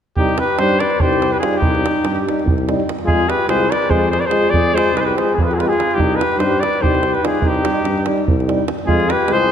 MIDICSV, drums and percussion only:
0, 0, Header, 1, 2, 480
1, 0, Start_track
1, 0, Key_signature, -3, "minor"
1, 0, Tempo, 414365
1, 195, Time_signature, 7, 3, 24, 8
1, 11026, End_track
2, 0, Start_track
2, 0, Title_t, "Davul"
2, 192, Note_on_c, 9, 43, 74
2, 307, Note_off_c, 9, 43, 0
2, 335, Note_on_c, 9, 37, 22
2, 437, Note_off_c, 9, 37, 0
2, 437, Note_on_c, 9, 37, 65
2, 552, Note_off_c, 9, 37, 0
2, 678, Note_on_c, 9, 37, 67
2, 794, Note_off_c, 9, 37, 0
2, 800, Note_on_c, 9, 37, 28
2, 916, Note_off_c, 9, 37, 0
2, 932, Note_on_c, 9, 37, 61
2, 1043, Note_off_c, 9, 37, 0
2, 1043, Note_on_c, 9, 37, 24
2, 1157, Note_on_c, 9, 43, 81
2, 1159, Note_off_c, 9, 37, 0
2, 1273, Note_off_c, 9, 43, 0
2, 1306, Note_on_c, 9, 37, 23
2, 1415, Note_off_c, 9, 37, 0
2, 1415, Note_on_c, 9, 37, 52
2, 1531, Note_off_c, 9, 37, 0
2, 1551, Note_on_c, 9, 37, 21
2, 1656, Note_off_c, 9, 37, 0
2, 1656, Note_on_c, 9, 37, 67
2, 1755, Note_off_c, 9, 37, 0
2, 1755, Note_on_c, 9, 37, 22
2, 1870, Note_off_c, 9, 37, 0
2, 1879, Note_on_c, 9, 43, 86
2, 1995, Note_off_c, 9, 43, 0
2, 2026, Note_on_c, 9, 37, 24
2, 2142, Note_off_c, 9, 37, 0
2, 2151, Note_on_c, 9, 37, 69
2, 2267, Note_off_c, 9, 37, 0
2, 2370, Note_on_c, 9, 37, 67
2, 2486, Note_off_c, 9, 37, 0
2, 2501, Note_on_c, 9, 37, 26
2, 2617, Note_off_c, 9, 37, 0
2, 2647, Note_on_c, 9, 37, 57
2, 2763, Note_off_c, 9, 37, 0
2, 2774, Note_on_c, 9, 37, 25
2, 2867, Note_on_c, 9, 43, 89
2, 2890, Note_off_c, 9, 37, 0
2, 2983, Note_off_c, 9, 43, 0
2, 2989, Note_on_c, 9, 37, 23
2, 3105, Note_off_c, 9, 37, 0
2, 3112, Note_on_c, 9, 37, 55
2, 3227, Note_off_c, 9, 37, 0
2, 3241, Note_on_c, 9, 37, 23
2, 3351, Note_off_c, 9, 37, 0
2, 3351, Note_on_c, 9, 37, 64
2, 3459, Note_off_c, 9, 37, 0
2, 3459, Note_on_c, 9, 37, 28
2, 3568, Note_on_c, 9, 43, 80
2, 3574, Note_off_c, 9, 37, 0
2, 3684, Note_off_c, 9, 43, 0
2, 3705, Note_on_c, 9, 37, 21
2, 3818, Note_off_c, 9, 37, 0
2, 3818, Note_on_c, 9, 37, 67
2, 3933, Note_off_c, 9, 37, 0
2, 4045, Note_on_c, 9, 37, 73
2, 4161, Note_off_c, 9, 37, 0
2, 4177, Note_on_c, 9, 37, 29
2, 4293, Note_off_c, 9, 37, 0
2, 4310, Note_on_c, 9, 37, 66
2, 4426, Note_off_c, 9, 37, 0
2, 4428, Note_on_c, 9, 37, 25
2, 4524, Note_on_c, 9, 43, 90
2, 4544, Note_off_c, 9, 37, 0
2, 4639, Note_off_c, 9, 43, 0
2, 4788, Note_on_c, 9, 37, 52
2, 4891, Note_off_c, 9, 37, 0
2, 4891, Note_on_c, 9, 37, 24
2, 4995, Note_off_c, 9, 37, 0
2, 4995, Note_on_c, 9, 37, 68
2, 5111, Note_off_c, 9, 37, 0
2, 5127, Note_on_c, 9, 37, 24
2, 5243, Note_off_c, 9, 37, 0
2, 5256, Note_on_c, 9, 43, 87
2, 5371, Note_off_c, 9, 43, 0
2, 5394, Note_on_c, 9, 37, 23
2, 5510, Note_off_c, 9, 37, 0
2, 5532, Note_on_c, 9, 37, 77
2, 5648, Note_off_c, 9, 37, 0
2, 5662, Note_on_c, 9, 37, 22
2, 5756, Note_off_c, 9, 37, 0
2, 5756, Note_on_c, 9, 37, 62
2, 5872, Note_off_c, 9, 37, 0
2, 6002, Note_on_c, 9, 37, 59
2, 6118, Note_off_c, 9, 37, 0
2, 6126, Note_on_c, 9, 37, 23
2, 6236, Note_on_c, 9, 43, 80
2, 6242, Note_off_c, 9, 37, 0
2, 6352, Note_off_c, 9, 43, 0
2, 6383, Note_on_c, 9, 37, 23
2, 6489, Note_off_c, 9, 37, 0
2, 6489, Note_on_c, 9, 37, 54
2, 6605, Note_off_c, 9, 37, 0
2, 6636, Note_on_c, 9, 37, 22
2, 6718, Note_off_c, 9, 37, 0
2, 6718, Note_on_c, 9, 37, 61
2, 6834, Note_off_c, 9, 37, 0
2, 6846, Note_on_c, 9, 37, 24
2, 6944, Note_on_c, 9, 43, 82
2, 6962, Note_off_c, 9, 37, 0
2, 7060, Note_off_c, 9, 43, 0
2, 7091, Note_on_c, 9, 37, 20
2, 7196, Note_off_c, 9, 37, 0
2, 7196, Note_on_c, 9, 37, 71
2, 7311, Note_off_c, 9, 37, 0
2, 7416, Note_on_c, 9, 37, 61
2, 7532, Note_off_c, 9, 37, 0
2, 7555, Note_on_c, 9, 37, 23
2, 7671, Note_off_c, 9, 37, 0
2, 7680, Note_on_c, 9, 37, 66
2, 7796, Note_off_c, 9, 37, 0
2, 7802, Note_on_c, 9, 37, 25
2, 7918, Note_off_c, 9, 37, 0
2, 7920, Note_on_c, 9, 43, 83
2, 8036, Note_off_c, 9, 43, 0
2, 8048, Note_on_c, 9, 37, 24
2, 8144, Note_off_c, 9, 37, 0
2, 8144, Note_on_c, 9, 37, 54
2, 8260, Note_off_c, 9, 37, 0
2, 8278, Note_on_c, 9, 37, 22
2, 8394, Note_off_c, 9, 37, 0
2, 8395, Note_on_c, 9, 37, 74
2, 8511, Note_off_c, 9, 37, 0
2, 8512, Note_on_c, 9, 37, 23
2, 8598, Note_on_c, 9, 43, 80
2, 8628, Note_off_c, 9, 37, 0
2, 8714, Note_off_c, 9, 43, 0
2, 8738, Note_on_c, 9, 37, 25
2, 8854, Note_off_c, 9, 37, 0
2, 8860, Note_on_c, 9, 37, 75
2, 8976, Note_off_c, 9, 37, 0
2, 9097, Note_on_c, 9, 37, 56
2, 9213, Note_off_c, 9, 37, 0
2, 9239, Note_on_c, 9, 37, 29
2, 9334, Note_off_c, 9, 37, 0
2, 9334, Note_on_c, 9, 37, 64
2, 9450, Note_off_c, 9, 37, 0
2, 9472, Note_on_c, 9, 37, 22
2, 9588, Note_off_c, 9, 37, 0
2, 9592, Note_on_c, 9, 43, 89
2, 9708, Note_off_c, 9, 43, 0
2, 9734, Note_on_c, 9, 37, 26
2, 9836, Note_off_c, 9, 37, 0
2, 9836, Note_on_c, 9, 37, 49
2, 9940, Note_off_c, 9, 37, 0
2, 9940, Note_on_c, 9, 37, 20
2, 10056, Note_off_c, 9, 37, 0
2, 10057, Note_on_c, 9, 37, 66
2, 10173, Note_off_c, 9, 37, 0
2, 10177, Note_on_c, 9, 37, 25
2, 10292, Note_off_c, 9, 37, 0
2, 10292, Note_on_c, 9, 43, 74
2, 10408, Note_off_c, 9, 43, 0
2, 10425, Note_on_c, 9, 37, 27
2, 10540, Note_off_c, 9, 37, 0
2, 10540, Note_on_c, 9, 37, 70
2, 10656, Note_off_c, 9, 37, 0
2, 10752, Note_on_c, 9, 37, 66
2, 10868, Note_off_c, 9, 37, 0
2, 10907, Note_on_c, 9, 37, 26
2, 11023, Note_off_c, 9, 37, 0
2, 11026, End_track
0, 0, End_of_file